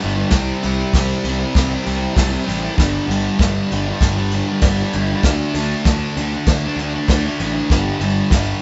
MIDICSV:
0, 0, Header, 1, 4, 480
1, 0, Start_track
1, 0, Tempo, 616016
1, 236, Time_signature, 4, 2, 24, 8
1, 6716, End_track
2, 0, Start_track
2, 0, Title_t, "Distorted electric guitar"
2, 0, Program_c, 0, 30
2, 0, Note_on_c, 0, 43, 81
2, 12, Note_on_c, 0, 50, 85
2, 22, Note_on_c, 0, 55, 90
2, 121, Note_off_c, 0, 55, 0
2, 124, Note_on_c, 0, 55, 78
2, 146, Note_off_c, 0, 50, 0
2, 156, Note_on_c, 0, 50, 62
2, 218, Note_off_c, 0, 43, 0
2, 242, Note_off_c, 0, 50, 0
2, 250, Note_on_c, 0, 48, 95
2, 260, Note_off_c, 0, 55, 0
2, 263, Note_on_c, 0, 55, 91
2, 277, Note_on_c, 0, 60, 103
2, 484, Note_off_c, 0, 48, 0
2, 494, Note_on_c, 0, 48, 69
2, 500, Note_off_c, 0, 55, 0
2, 503, Note_on_c, 0, 55, 79
2, 504, Note_off_c, 0, 60, 0
2, 514, Note_on_c, 0, 60, 84
2, 722, Note_off_c, 0, 48, 0
2, 731, Note_on_c, 0, 48, 86
2, 737, Note_off_c, 0, 55, 0
2, 740, Note_on_c, 0, 55, 94
2, 750, Note_off_c, 0, 60, 0
2, 760, Note_on_c, 0, 60, 106
2, 977, Note_off_c, 0, 48, 0
2, 987, Note_on_c, 0, 48, 72
2, 988, Note_off_c, 0, 55, 0
2, 991, Note_on_c, 0, 55, 81
2, 1002, Note_off_c, 0, 60, 0
2, 1011, Note_on_c, 0, 60, 81
2, 1078, Note_off_c, 0, 60, 0
2, 1088, Note_on_c, 0, 60, 75
2, 1112, Note_off_c, 0, 55, 0
2, 1121, Note_on_c, 0, 55, 60
2, 1314, Note_off_c, 0, 60, 0
2, 1323, Note_on_c, 0, 60, 74
2, 1331, Note_off_c, 0, 48, 0
2, 1346, Note_off_c, 0, 55, 0
2, 1355, Note_on_c, 0, 55, 67
2, 1428, Note_on_c, 0, 48, 82
2, 1433, Note_off_c, 0, 55, 0
2, 1442, Note_on_c, 0, 55, 89
2, 1455, Note_off_c, 0, 60, 0
2, 1464, Note_on_c, 0, 60, 83
2, 1526, Note_off_c, 0, 60, 0
2, 1535, Note_on_c, 0, 60, 70
2, 1553, Note_off_c, 0, 55, 0
2, 1562, Note_on_c, 0, 55, 66
2, 1656, Note_off_c, 0, 48, 0
2, 1660, Note_off_c, 0, 55, 0
2, 1665, Note_on_c, 0, 48, 90
2, 1670, Note_on_c, 0, 55, 98
2, 1684, Note_off_c, 0, 60, 0
2, 1694, Note_on_c, 0, 60, 109
2, 1773, Note_off_c, 0, 60, 0
2, 1783, Note_on_c, 0, 60, 75
2, 1805, Note_off_c, 0, 55, 0
2, 1815, Note_on_c, 0, 55, 66
2, 1894, Note_off_c, 0, 48, 0
2, 1903, Note_on_c, 0, 48, 78
2, 1913, Note_off_c, 0, 55, 0
2, 1922, Note_on_c, 0, 55, 86
2, 1925, Note_off_c, 0, 60, 0
2, 1934, Note_on_c, 0, 60, 89
2, 2009, Note_off_c, 0, 60, 0
2, 2019, Note_on_c, 0, 60, 77
2, 2036, Note_off_c, 0, 55, 0
2, 2045, Note_on_c, 0, 55, 71
2, 2133, Note_off_c, 0, 60, 0
2, 2135, Note_off_c, 0, 48, 0
2, 2142, Note_on_c, 0, 43, 90
2, 2146, Note_off_c, 0, 55, 0
2, 2159, Note_on_c, 0, 50, 94
2, 2167, Note_on_c, 0, 55, 95
2, 2384, Note_off_c, 0, 43, 0
2, 2393, Note_on_c, 0, 43, 74
2, 2401, Note_off_c, 0, 50, 0
2, 2410, Note_on_c, 0, 50, 77
2, 2419, Note_off_c, 0, 55, 0
2, 2429, Note_on_c, 0, 55, 85
2, 2633, Note_off_c, 0, 43, 0
2, 2642, Note_on_c, 0, 43, 97
2, 2647, Note_off_c, 0, 50, 0
2, 2657, Note_on_c, 0, 50, 95
2, 2662, Note_off_c, 0, 55, 0
2, 2671, Note_on_c, 0, 55, 93
2, 2888, Note_off_c, 0, 43, 0
2, 2897, Note_on_c, 0, 43, 72
2, 2899, Note_off_c, 0, 50, 0
2, 2907, Note_off_c, 0, 55, 0
2, 2909, Note_on_c, 0, 50, 84
2, 2916, Note_on_c, 0, 55, 84
2, 3012, Note_off_c, 0, 55, 0
2, 3021, Note_on_c, 0, 55, 77
2, 3037, Note_off_c, 0, 50, 0
2, 3046, Note_on_c, 0, 50, 65
2, 3226, Note_off_c, 0, 55, 0
2, 3236, Note_on_c, 0, 55, 84
2, 3246, Note_off_c, 0, 43, 0
2, 3257, Note_off_c, 0, 50, 0
2, 3266, Note_on_c, 0, 50, 60
2, 3366, Note_on_c, 0, 43, 85
2, 3380, Note_off_c, 0, 50, 0
2, 3382, Note_off_c, 0, 55, 0
2, 3390, Note_on_c, 0, 50, 86
2, 3391, Note_on_c, 0, 55, 92
2, 3484, Note_off_c, 0, 55, 0
2, 3493, Note_on_c, 0, 55, 80
2, 3510, Note_off_c, 0, 50, 0
2, 3519, Note_on_c, 0, 50, 61
2, 3605, Note_off_c, 0, 43, 0
2, 3614, Note_on_c, 0, 43, 98
2, 3624, Note_off_c, 0, 50, 0
2, 3633, Note_on_c, 0, 50, 96
2, 3635, Note_off_c, 0, 55, 0
2, 3645, Note_on_c, 0, 55, 99
2, 3718, Note_off_c, 0, 55, 0
2, 3727, Note_on_c, 0, 55, 77
2, 3750, Note_off_c, 0, 50, 0
2, 3759, Note_on_c, 0, 50, 64
2, 3850, Note_off_c, 0, 43, 0
2, 3859, Note_on_c, 0, 43, 76
2, 3860, Note_off_c, 0, 50, 0
2, 3866, Note_off_c, 0, 55, 0
2, 3869, Note_on_c, 0, 50, 88
2, 3876, Note_on_c, 0, 55, 85
2, 3977, Note_off_c, 0, 55, 0
2, 3986, Note_on_c, 0, 55, 78
2, 4001, Note_off_c, 0, 50, 0
2, 4011, Note_on_c, 0, 50, 65
2, 4073, Note_off_c, 0, 43, 0
2, 4077, Note_off_c, 0, 55, 0
2, 4083, Note_off_c, 0, 50, 0
2, 4093, Note_on_c, 0, 50, 95
2, 4110, Note_on_c, 0, 57, 90
2, 4127, Note_on_c, 0, 62, 90
2, 4317, Note_off_c, 0, 50, 0
2, 4326, Note_on_c, 0, 50, 80
2, 4332, Note_off_c, 0, 57, 0
2, 4341, Note_on_c, 0, 57, 81
2, 4354, Note_off_c, 0, 62, 0
2, 4357, Note_on_c, 0, 62, 79
2, 4556, Note_off_c, 0, 50, 0
2, 4565, Note_off_c, 0, 57, 0
2, 4565, Note_on_c, 0, 50, 89
2, 4575, Note_on_c, 0, 57, 92
2, 4589, Note_off_c, 0, 62, 0
2, 4592, Note_on_c, 0, 62, 105
2, 4802, Note_off_c, 0, 50, 0
2, 4811, Note_on_c, 0, 50, 77
2, 4816, Note_off_c, 0, 57, 0
2, 4825, Note_on_c, 0, 57, 90
2, 4838, Note_off_c, 0, 62, 0
2, 4841, Note_on_c, 0, 62, 88
2, 4919, Note_off_c, 0, 62, 0
2, 4928, Note_on_c, 0, 62, 72
2, 4944, Note_off_c, 0, 57, 0
2, 4954, Note_on_c, 0, 57, 55
2, 5164, Note_off_c, 0, 50, 0
2, 5168, Note_off_c, 0, 62, 0
2, 5178, Note_on_c, 0, 62, 79
2, 5188, Note_off_c, 0, 57, 0
2, 5198, Note_on_c, 0, 57, 68
2, 5279, Note_on_c, 0, 50, 79
2, 5290, Note_off_c, 0, 57, 0
2, 5299, Note_on_c, 0, 57, 89
2, 5306, Note_off_c, 0, 62, 0
2, 5315, Note_on_c, 0, 62, 88
2, 5396, Note_off_c, 0, 62, 0
2, 5406, Note_on_c, 0, 62, 70
2, 5422, Note_off_c, 0, 57, 0
2, 5431, Note_on_c, 0, 57, 60
2, 5511, Note_off_c, 0, 50, 0
2, 5520, Note_on_c, 0, 50, 88
2, 5529, Note_off_c, 0, 57, 0
2, 5538, Note_off_c, 0, 62, 0
2, 5538, Note_on_c, 0, 57, 102
2, 5547, Note_on_c, 0, 62, 106
2, 5638, Note_off_c, 0, 62, 0
2, 5647, Note_on_c, 0, 62, 70
2, 5665, Note_off_c, 0, 57, 0
2, 5674, Note_on_c, 0, 57, 57
2, 5769, Note_off_c, 0, 50, 0
2, 5778, Note_on_c, 0, 50, 71
2, 5782, Note_off_c, 0, 57, 0
2, 5791, Note_on_c, 0, 57, 80
2, 5795, Note_off_c, 0, 62, 0
2, 5804, Note_on_c, 0, 62, 91
2, 5867, Note_off_c, 0, 62, 0
2, 5877, Note_on_c, 0, 62, 70
2, 5888, Note_off_c, 0, 57, 0
2, 5897, Note_on_c, 0, 57, 58
2, 5982, Note_off_c, 0, 62, 0
2, 5993, Note_off_c, 0, 50, 0
2, 5993, Note_off_c, 0, 57, 0
2, 6007, Note_on_c, 0, 43, 89
2, 6017, Note_on_c, 0, 50, 98
2, 6030, Note_on_c, 0, 55, 101
2, 6216, Note_off_c, 0, 43, 0
2, 6226, Note_on_c, 0, 43, 73
2, 6236, Note_off_c, 0, 50, 0
2, 6246, Note_on_c, 0, 50, 80
2, 6250, Note_off_c, 0, 55, 0
2, 6253, Note_on_c, 0, 55, 84
2, 6467, Note_off_c, 0, 43, 0
2, 6476, Note_on_c, 0, 43, 87
2, 6481, Note_off_c, 0, 50, 0
2, 6490, Note_on_c, 0, 50, 91
2, 6502, Note_off_c, 0, 55, 0
2, 6505, Note_on_c, 0, 55, 98
2, 6699, Note_off_c, 0, 43, 0
2, 6716, Note_off_c, 0, 50, 0
2, 6716, Note_off_c, 0, 55, 0
2, 6716, End_track
3, 0, Start_track
3, 0, Title_t, "Picked electric bass"
3, 0, Program_c, 1, 34
3, 31, Note_on_c, 1, 31, 98
3, 173, Note_off_c, 1, 31, 0
3, 248, Note_on_c, 1, 36, 102
3, 397, Note_off_c, 1, 36, 0
3, 500, Note_on_c, 1, 36, 91
3, 645, Note_off_c, 1, 36, 0
3, 730, Note_on_c, 1, 36, 91
3, 879, Note_off_c, 1, 36, 0
3, 967, Note_on_c, 1, 36, 93
3, 1117, Note_off_c, 1, 36, 0
3, 1215, Note_on_c, 1, 36, 92
3, 1362, Note_off_c, 1, 36, 0
3, 1455, Note_on_c, 1, 36, 97
3, 1602, Note_off_c, 1, 36, 0
3, 1688, Note_on_c, 1, 36, 97
3, 1837, Note_off_c, 1, 36, 0
3, 1936, Note_on_c, 1, 33, 99
3, 2083, Note_off_c, 1, 33, 0
3, 2167, Note_on_c, 1, 31, 107
3, 2316, Note_off_c, 1, 31, 0
3, 2398, Note_on_c, 1, 31, 97
3, 2550, Note_off_c, 1, 31, 0
3, 2646, Note_on_c, 1, 31, 89
3, 2796, Note_off_c, 1, 31, 0
3, 2896, Note_on_c, 1, 31, 98
3, 3042, Note_off_c, 1, 31, 0
3, 3128, Note_on_c, 1, 31, 92
3, 3430, Note_off_c, 1, 31, 0
3, 3604, Note_on_c, 1, 31, 97
3, 3754, Note_off_c, 1, 31, 0
3, 3850, Note_on_c, 1, 31, 94
3, 3998, Note_off_c, 1, 31, 0
3, 4083, Note_on_c, 1, 38, 103
3, 4234, Note_off_c, 1, 38, 0
3, 4318, Note_on_c, 1, 38, 90
3, 4471, Note_off_c, 1, 38, 0
3, 4565, Note_on_c, 1, 38, 95
3, 4715, Note_off_c, 1, 38, 0
3, 4805, Note_on_c, 1, 38, 99
3, 4955, Note_off_c, 1, 38, 0
3, 5048, Note_on_c, 1, 38, 92
3, 5197, Note_off_c, 1, 38, 0
3, 5271, Note_on_c, 1, 38, 88
3, 5426, Note_off_c, 1, 38, 0
3, 5525, Note_on_c, 1, 38, 97
3, 5675, Note_off_c, 1, 38, 0
3, 5766, Note_on_c, 1, 33, 95
3, 5916, Note_off_c, 1, 33, 0
3, 6002, Note_on_c, 1, 31, 100
3, 6153, Note_off_c, 1, 31, 0
3, 6231, Note_on_c, 1, 31, 90
3, 6386, Note_off_c, 1, 31, 0
3, 6485, Note_on_c, 1, 31, 96
3, 6635, Note_off_c, 1, 31, 0
3, 6716, End_track
4, 0, Start_track
4, 0, Title_t, "Drums"
4, 0, Note_on_c, 9, 51, 81
4, 78, Note_off_c, 9, 51, 0
4, 235, Note_on_c, 9, 51, 110
4, 241, Note_on_c, 9, 38, 119
4, 246, Note_on_c, 9, 36, 116
4, 313, Note_off_c, 9, 51, 0
4, 319, Note_off_c, 9, 38, 0
4, 323, Note_off_c, 9, 36, 0
4, 490, Note_on_c, 9, 51, 87
4, 568, Note_off_c, 9, 51, 0
4, 729, Note_on_c, 9, 36, 113
4, 734, Note_on_c, 9, 51, 116
4, 739, Note_on_c, 9, 38, 118
4, 807, Note_off_c, 9, 36, 0
4, 812, Note_off_c, 9, 51, 0
4, 817, Note_off_c, 9, 38, 0
4, 969, Note_on_c, 9, 51, 82
4, 1047, Note_off_c, 9, 51, 0
4, 1209, Note_on_c, 9, 36, 115
4, 1213, Note_on_c, 9, 51, 112
4, 1218, Note_on_c, 9, 38, 119
4, 1287, Note_off_c, 9, 36, 0
4, 1291, Note_off_c, 9, 51, 0
4, 1296, Note_off_c, 9, 38, 0
4, 1451, Note_on_c, 9, 51, 79
4, 1529, Note_off_c, 9, 51, 0
4, 1687, Note_on_c, 9, 36, 115
4, 1691, Note_on_c, 9, 51, 115
4, 1696, Note_on_c, 9, 38, 115
4, 1765, Note_off_c, 9, 36, 0
4, 1769, Note_off_c, 9, 51, 0
4, 1774, Note_off_c, 9, 38, 0
4, 1940, Note_on_c, 9, 51, 80
4, 2018, Note_off_c, 9, 51, 0
4, 2166, Note_on_c, 9, 36, 117
4, 2172, Note_on_c, 9, 51, 106
4, 2178, Note_on_c, 9, 38, 116
4, 2244, Note_off_c, 9, 36, 0
4, 2250, Note_off_c, 9, 51, 0
4, 2256, Note_off_c, 9, 38, 0
4, 2419, Note_on_c, 9, 51, 81
4, 2497, Note_off_c, 9, 51, 0
4, 2644, Note_on_c, 9, 36, 120
4, 2649, Note_on_c, 9, 51, 98
4, 2655, Note_on_c, 9, 38, 121
4, 2722, Note_off_c, 9, 36, 0
4, 2727, Note_off_c, 9, 51, 0
4, 2733, Note_off_c, 9, 38, 0
4, 2893, Note_on_c, 9, 51, 74
4, 2970, Note_off_c, 9, 51, 0
4, 3123, Note_on_c, 9, 36, 121
4, 3126, Note_on_c, 9, 51, 102
4, 3131, Note_on_c, 9, 38, 115
4, 3201, Note_off_c, 9, 36, 0
4, 3204, Note_off_c, 9, 51, 0
4, 3209, Note_off_c, 9, 38, 0
4, 3360, Note_on_c, 9, 51, 81
4, 3438, Note_off_c, 9, 51, 0
4, 3596, Note_on_c, 9, 51, 101
4, 3600, Note_on_c, 9, 36, 120
4, 3601, Note_on_c, 9, 38, 121
4, 3674, Note_off_c, 9, 51, 0
4, 3678, Note_off_c, 9, 36, 0
4, 3679, Note_off_c, 9, 38, 0
4, 3840, Note_on_c, 9, 51, 80
4, 3918, Note_off_c, 9, 51, 0
4, 4079, Note_on_c, 9, 36, 120
4, 4079, Note_on_c, 9, 51, 105
4, 4084, Note_on_c, 9, 38, 110
4, 4157, Note_off_c, 9, 36, 0
4, 4157, Note_off_c, 9, 51, 0
4, 4162, Note_off_c, 9, 38, 0
4, 4319, Note_on_c, 9, 51, 81
4, 4397, Note_off_c, 9, 51, 0
4, 4559, Note_on_c, 9, 51, 115
4, 4561, Note_on_c, 9, 36, 117
4, 4564, Note_on_c, 9, 38, 119
4, 4637, Note_off_c, 9, 51, 0
4, 4639, Note_off_c, 9, 36, 0
4, 4642, Note_off_c, 9, 38, 0
4, 4806, Note_on_c, 9, 51, 81
4, 4884, Note_off_c, 9, 51, 0
4, 5038, Note_on_c, 9, 51, 110
4, 5040, Note_on_c, 9, 36, 117
4, 5043, Note_on_c, 9, 38, 118
4, 5116, Note_off_c, 9, 51, 0
4, 5118, Note_off_c, 9, 36, 0
4, 5121, Note_off_c, 9, 38, 0
4, 5288, Note_on_c, 9, 51, 82
4, 5366, Note_off_c, 9, 51, 0
4, 5520, Note_on_c, 9, 36, 117
4, 5522, Note_on_c, 9, 51, 112
4, 5528, Note_on_c, 9, 38, 110
4, 5598, Note_off_c, 9, 36, 0
4, 5600, Note_off_c, 9, 51, 0
4, 5606, Note_off_c, 9, 38, 0
4, 5764, Note_on_c, 9, 51, 82
4, 5842, Note_off_c, 9, 51, 0
4, 6000, Note_on_c, 9, 36, 113
4, 6004, Note_on_c, 9, 49, 113
4, 6010, Note_on_c, 9, 38, 116
4, 6078, Note_off_c, 9, 36, 0
4, 6082, Note_off_c, 9, 49, 0
4, 6088, Note_off_c, 9, 38, 0
4, 6238, Note_on_c, 9, 51, 81
4, 6316, Note_off_c, 9, 51, 0
4, 6477, Note_on_c, 9, 36, 122
4, 6477, Note_on_c, 9, 51, 102
4, 6483, Note_on_c, 9, 38, 122
4, 6555, Note_off_c, 9, 36, 0
4, 6555, Note_off_c, 9, 51, 0
4, 6561, Note_off_c, 9, 38, 0
4, 6716, End_track
0, 0, End_of_file